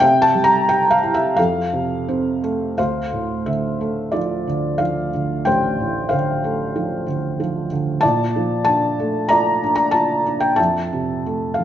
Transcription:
0.00 1.34 C3 medium
0.00 1.13 E5 medium
0.00 0.24 G5 loud
0.22 0.46 A5 loud
0.35 1.34 G3 medium
0.44 0.69 A#5 loud
0.69 1.36 G4 medium
0.69 0.92 G5 loud
0.91 1.15 F5 medium
1.03 1.37 E4 medium
1.14 1.38 E5 medium
1.36 2.74 F2 medium
1.36 2.74 A4 medium
1.36 2.39 F5 medium
1.73 2.75 C3 medium
2.08 2.76 C4 medium
2.44 2.77 A3 medium
2.78 5.43 D2 medium
2.78 4.11 C5 medium
2.78 3.48 F5 medium
3.13 4.44 A2 soft
3.46 4.46 D3 soft
3.46 4.16 E5 medium
3.81 5.10 A3 medium
4.12 4.78 F3 soft
4.12 5.42 F4 medium
4.12 4.82 D5 medium
4.47 5.12 D3 soft
4.78 6.08 F3 soft
4.78 5.47 F5 medium
5.14 6.11 D3 soft
5.45 7.99 A1 medium
5.45 6.09 C5 medium
5.45 6.13 G5 medium
5.80 7.04 A2 medium
6.09 7.05 D3 soft
6.09 7.67 C5 medium
6.09 7.66 F5 medium
6.44 7.68 A3 medium
6.76 7.38 F3 medium
7.07 7.70 D3 soft
7.40 8.01 F3 medium
7.72 8.02 D3 medium
8.01 10.55 A#2 medium
8.01 9.26 D5 medium
8.01 8.61 A5 loud
8.36 9.59 F3 medium
8.65 9.62 D4 medium
8.65 9.31 A5 medium
9.00 10.23 A3 medium
9.29 9.93 F4 medium
9.29 10.55 D5 medium
9.29 9.74 A#5 loud
9.64 10.25 D4 medium
9.76 9.91 A#5 medium
9.91 10.57 F4 medium
9.91 10.37 A5 medium
10.26 10.58 D4 medium
10.40 10.58 G5 medium
10.56 11.64 F2 medium
10.56 11.64 E5 medium
10.56 11.58 A5 medium
10.93 11.64 C3 medium
11.26 11.64 A3 soft
11.54 11.64 F5 medium
11.59 11.64 E3 medium

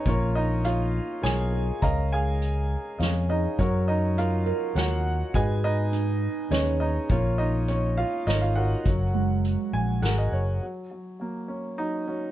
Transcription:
0.06 0.98 A#1 medium
0.06 1.78 A#3 medium
0.06 0.34 C#4 medium
0.06 0.34 F4 medium
0.06 0.34 A#4 medium
0.06 0.37 C#5 medium
0.06 kick medium
0.06 closed hi-hat soft
0.35 0.63 D#4 medium
0.35 0.65 D#5 medium
0.65 1.20 F4 medium
0.65 1.20 C#5 medium
0.65 1.25 F5 medium
0.65 closed hi-hat medium
1.22 1.70 B1 loud
1.22 1.80 F4 medium
1.22 1.79 G#4 medium
1.22 1.80 A#4 soft
1.22 1.80 C#5 medium
1.22 1.84 G#5 medium
1.22 snare medium
1.22 closed hi-hat medium
1.52 2.07 G#4 medium
1.82 2.75 C#2 medium
1.82 3.00 C#4 medium
1.82 2.10 A#4 medium
1.82 2.10 D#5 medium
1.82 2.10 F5 medium
1.82 2.12 A#5 medium
1.82 kick medium
1.82 closed hi-hat soft
2.12 2.97 G#4 medium
2.12 2.96 F5 medium
2.12 3.02 G#5 medium
2.42 closed hi-hat medium
2.99 3.46 F2 medium
2.99 3.28 C#4 medium
2.99 3.56 C#5 medium
2.99 3.28 D#5 soft
2.99 3.56 F5 medium
2.99 snare medium
2.99 closed hi-hat soft
3.29 3.57 D#4 medium
3.29 3.83 G#4 medium
3.29 3.59 D#5 medium
3.59 4.51 F#2 medium
3.59 5.30 F#3 medium
3.59 3.86 C#4 medium
3.59 3.86 F#4 medium
3.59 3.86 A#4 medium
3.59 3.89 C#5 medium
3.59 kick medium
3.59 closed hi-hat soft
3.88 4.16 D#4 medium
3.88 4.18 D#5 medium
4.18 4.72 F4 medium
4.18 4.72 A#4 medium
4.18 4.78 F5 medium
4.18 closed hi-hat medium
4.46 5.37 A#4 medium
4.75 5.22 D#2 medium
4.75 4.77 F#4 medium
4.75 5.32 F#4 medium
4.75 5.32 A#4 soft
4.75 5.32 C#5 medium
4.75 5.37 F#5 medium
4.75 snare medium
4.75 closed hi-hat soft
5.34 6.27 G#2 medium
5.34 7.06 G#3 medium
5.34 6.25 F#4 soft
5.34 5.62 G#4 medium
5.34 5.62 B4 medium
5.34 5.62 D#5 medium
5.34 5.65 G#5 medium
5.34 kick medium
5.34 closed hi-hat soft
5.64 6.48 D#4 medium
5.64 6.48 B4 medium
5.64 6.50 D#5 loud
5.92 6.83 D#4 medium
5.92 closed hi-hat medium
6.51 6.97 D#2 loud
6.51 7.35 C#4 medium
6.51 6.79 C#4 medium
6.51 7.08 G#4 medium
6.51 7.08 B4 soft
6.51 6.79 C#5 medium
6.51 6.79 D#5 medium
6.51 snare medium
6.51 closed hi-hat medium
6.80 7.08 D#4 medium
6.80 7.10 D#5 medium
7.09 8.02 A#1 medium
7.09 8.82 A#3 medium
7.09 7.38 C#4 medium
7.09 7.38 F4 medium
7.09 7.38 A#4 medium
7.09 7.40 C#5 medium
7.09 kick medium
7.09 closed hi-hat soft
7.38 7.66 D#4 medium
7.38 7.69 D#5 medium
7.68 7.96 C#4 medium
7.68 7.99 C#5 medium
7.68 closed hi-hat medium
7.97 8.26 F4 medium
7.97 8.28 F5 medium
8.27 8.73 G#1 loud
8.27 8.41 D#4 medium
8.27 8.42 F4 soft
8.27 8.56 A#4 medium
8.27 8.56 C#5 medium
8.27 8.42 D#5 medium
8.27 snare medium
8.27 closed hi-hat medium
8.41 8.56 F4 medium
8.41 8.57 F5 medium
8.56 10.00 F#4 medium
8.56 10.02 A#4 medium
8.56 10.29 C#5 soft
8.56 10.01 F#5 medium
8.86 9.55 F#1 medium
8.86 10.58 F#3 medium
8.86 kick medium
8.86 closed hi-hat soft
9.14 10.05 G#3 medium
9.45 closed hi-hat soft
9.73 10.00 A#1 medium
9.73 10.01 G#5 medium
10.02 10.29 G#1 medium
10.02 10.59 F#4 soft
10.02 10.59 G#4 soft
10.02 10.60 A#4 medium
10.02 10.16 F#5 medium
10.02 snare medium
10.02 closed hi-hat soft
10.18 10.32 D#5 medium
10.32 10.58 F#1 medium
10.32 10.60 C#5 medium
10.63 10.90 F#3 soft
10.91 11.18 F#3 soft
11.20 11.78 F#3 soft
11.20 11.48 A#3 medium
11.48 11.79 C#4 medium
11.78 12.07 F#3 soft
11.78 12.09 D#4 medium
12.07 12.31 F#3 soft
12.07 12.31 C#4 medium

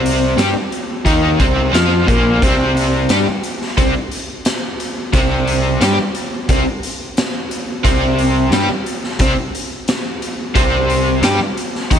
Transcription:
0.00 0.34 C2 medium
0.00 0.36 C3 medium
0.00 0.36 C4 medium
0.06 closed hi-hat medium
0.37 0.53 G2 loud
0.37 0.53 G3 medium
0.37 0.54 G4 loud
0.37 snare loud
0.37 closed hi-hat medium
0.54 muted picked electric bass stroke soft
0.54 muted overdriven electric guitar stroke medium
0.72 closed hi-hat medium
1.05 1.37 D#2 medium
1.05 1.38 D#3 medium
1.05 1.39 D#4 medium
1.05 kick medium
1.05 closed hi-hat medium
1.40 1.71 C2 medium
1.40 1.72 C3 medium
1.40 1.73 C4 medium
1.40 kick loud
1.40 closed hi-hat medium
1.73 2.05 F2 medium
1.73 2.06 F3 medium
1.73 2.07 F4 loud
1.73 snare loud
1.73 closed hi-hat medium
2.07 2.40 A#1 medium
2.07 2.40 A#2 medium
2.07 2.41 A#3 medium
2.07 kick loud
2.07 closed hi-hat medium
2.42 3.05 C2 medium
2.42 3.09 C3 medium
2.42 3.09 C4 medium
2.42 kick medium
2.42 closed hi-hat medium
2.77 closed hi-hat medium
3.09 3.25 G2 medium
3.09 3.26 G3 medium
3.09 3.26 G4 medium
3.09 snare loud
3.09 closed hi-hat medium
3.27 muted overdriven electric guitar stroke medium
3.27 muted picked electric bass stroke soft
3.43 closed hi-hat medium
3.62 snare soft
3.78 3.93 C2 medium
3.78 3.93 C3 medium
3.78 3.94 C4 medium
3.78 kick loud
3.78 closed hi-hat medium
4.11 closed hi-hat medium
4.45 snare loud
4.45 closed hi-hat medium
4.80 closed hi-hat medium
5.13 5.77 C2 medium
5.13 5.79 C3 medium
5.13 5.80 C4 medium
5.13 kick loud
5.13 closed hi-hat medium
5.47 closed hi-hat medium
5.81 5.96 G2 loud
5.81 5.97 G3 medium
5.81 5.97 G4 loud
5.81 snare loud
5.81 closed hi-hat medium
5.98 muted picked electric bass stroke soft
5.98 muted overdriven electric guitar stroke soft
6.15 closed hi-hat medium
6.49 6.64 C2 medium
6.49 6.65 C3 medium
6.49 6.65 C4 medium
6.49 kick loud
6.49 closed hi-hat medium
6.83 closed hi-hat medium
7.17 snare loud
7.17 closed hi-hat medium
7.51 closed hi-hat medium
7.84 8.48 C2 medium
7.84 8.51 C3 medium
7.84 8.51 C4 loud
7.84 kick medium
7.84 closed hi-hat medium
8.19 closed hi-hat medium
8.50 8.67 G2 loud
8.50 8.68 G3 medium
8.50 8.68 G4 loud
8.50 snare loud
8.50 closed hi-hat medium
8.69 muted picked electric bass stroke soft
8.69 muted overdriven electric guitar stroke medium
8.86 closed hi-hat medium
9.04 snare soft
9.19 9.35 C2 medium
9.19 9.36 C3 medium
9.19 9.36 C4 medium
9.19 kick medium
9.19 closed hi-hat medium
9.55 closed hi-hat medium
9.88 snare loud
9.88 closed hi-hat medium
10.22 closed hi-hat medium
10.55 11.19 C2 medium
10.55 11.21 C3 medium
10.55 11.22 C4 loud
10.55 kick loud
10.55 closed hi-hat medium
10.90 closed hi-hat medium
11.22 11.38 G2 medium
11.22 11.38 G3 medium
11.22 11.39 G4 medium
11.22 snare loud
11.22 closed hi-hat medium
11.39 muted picked electric bass stroke soft
11.39 muted overdriven electric guitar stroke soft
11.57 closed hi-hat medium
11.75 snare soft
11.91 11.99 D#2 medium
11.91 11.99 D#3 medium
11.91 11.99 D#4 medium
11.91 kick loud
11.91 closed hi-hat medium

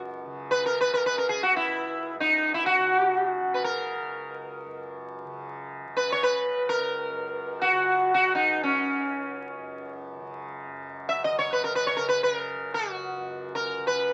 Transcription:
0.00 1.48 C#2 medium
0.00 2.13 F#2 medium
0.00 0.25 C#3 medium
0.25 0.89 C#3 medium
0.51 0.65 B4 medium
0.66 0.80 A#4 medium
0.81 0.93 B4 medium
0.89 2.78 C#3 medium
0.94 1.05 A#4 medium
1.06 1.17 B4 medium
1.18 1.28 A#4 medium
1.29 1.41 G#4 medium
1.43 1.56 F#4 medium
1.49 3.99 C#2 medium
1.56 2.14 E4 medium
2.13 4.63 F#2 medium
2.20 2.53 D#4 medium
2.54 2.66 E4 medium
2.66 3.60 F#4 medium
2.78 3.40 C#3 medium
3.40 5.25 C#3 medium
3.54 3.62 B4 medium
3.64 4.95 A#4 medium
3.99 6.48 C#2 medium
4.64 7.10 F#2 medium
5.25 5.86 C#3 medium
5.86 7.71 C#3 medium
5.97 6.11 B4 medium
6.12 6.22 C#5 medium
6.23 6.69 B4 medium
6.49 8.95 C#2 medium
6.69 7.66 A#4 medium
7.10 9.58 F#2 medium
7.62 8.13 F#4 medium
7.71 8.34 C#3 medium
8.14 8.34 F#4 medium
8.34 10.19 C#3 medium
8.34 8.63 D#4 medium
8.63 9.91 C#4 medium
8.95 12.55 C#2 medium
9.58 10.66 F#2 medium
10.19 11.31 C#3 medium
10.66 13.17 F#2 medium
11.09 11.24 E5 medium
11.24 11.38 D#5 medium
11.31 11.92 C#3 soft
11.39 11.52 C#5 medium
11.53 11.63 B4 medium
11.64 11.75 A#4 medium
11.75 11.86 B4 medium
11.87 11.98 C#5 medium
11.92 13.78 C#3 medium
11.97 12.08 A#4 medium
12.09 12.23 B4 medium
12.23 12.35 B4 medium
12.35 12.74 A#4 medium
12.55 14.13 C#2 medium
12.74 13.55 F#4 medium
13.17 14.13 F#2 medium
13.55 13.87 A#4 medium
13.78 14.13 C#3 soft
13.87 14.13 B4 medium

